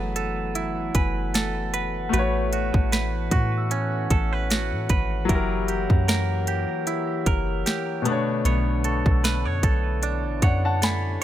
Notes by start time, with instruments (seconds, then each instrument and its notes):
Already playing: 808-style bass F#1, brass ensemble E3 F#3 A3 B3 F#5, grand piano F#3 E4 G#4 A4 B4, clean electric guitar F#3 A4 B4
0.16 clean electric guitar A4, closed hi-hat
0.55 clean electric guitar E4, closed hi-hat
0.95 808-style bass F#1, clean electric guitar B4, celesta G#5, kick, closed hi-hat
1.34 clean electric guitar A4, snare, closed hi-hat
1.74 clean electric guitar B4, celesta F#5, closed hi-hat
2.09 brass ensemble E3 A3 C#5 F#5, grand piano A3 F#4, clean electric guitar A3
2.13 808-style bass A1, clean electric guitar B4, grand piano B4, closed hi-hat
2.19 grand piano C#5
2.53 clean electric guitar F#4, closed hi-hat
2.74 808-style bass A1, kick
2.92 clean electric guitar B4, snare, closed hi-hat
3.31 808-style bass A2, clean electric guitar F#4, celesta C#6, kick, closed hi-hat
3.57 celesta E6
3.71 clean electric guitar C#4, closed hi-hat
3.81 celesta F#6
4.10 808-style bass A1, clean electric guitar A4, kick, closed hi-hat
4.33 clean electric guitar B4
4.50 clean electric guitar F#4, snare, closed hi-hat
4.72 808-style bass A2
4.89 808-style bass G#1, clean electric guitar B4, kick, closed hi-hat
5.25 grand piano F#3 E4, brass ensemble G4
5.29 808-style bass F#1, brass ensemble E3 A#3, clean electric guitar F#3 A#4, grand piano G4, kick, closed hi-hat
5.35 grand piano A#4
5.68 clean electric guitar G4, closed hi-hat
5.90 808-style bass F#2, kick
6.08 clean electric guitar A#4, snare, closed hi-hat
6.47 clean electric guitar G4, closed hi-hat
6.87 clean electric guitar E4, closed hi-hat
7.26 808-style bass F#1, clean electric guitar A#4, kick, closed hi-hat
7.66 clean electric guitar G4, snare, closed hi-hat
8.02 grand piano B2 A3, brass ensemble D3, clean electric guitar B3, closed hi-hat
8.06 brass ensemble A3 B3, grand piano D4
8.12 grand piano C#5
8.45 808-style bass B1, clean electric guitar B3 C#5, closed hi-hat
8.84 clean electric guitar A4, celesta C#6, closed hi-hat
9.06 808-style bass B1, kick
9.11 celesta E6
9.24 clean electric guitar B4, snare, closed hi-hat
9.35 celesta F#6
9.45 808-style bass F#2, clean electric guitar C#5
9.63 808-style bass B1, brass ensemble E4, clean electric guitar A4, kick, closed hi-hat
10.03 clean electric guitar D4, closed hi-hat
10.24 808-style bass A1
10.42 808-style bass F#2, clean electric guitar C#5, grand piano D5 F#5, kick, closed hi-hat
10.65 grand piano F#5 A5
10.82 clean electric guitar A4, grand piano G#5 B5, snare, closed hi-hat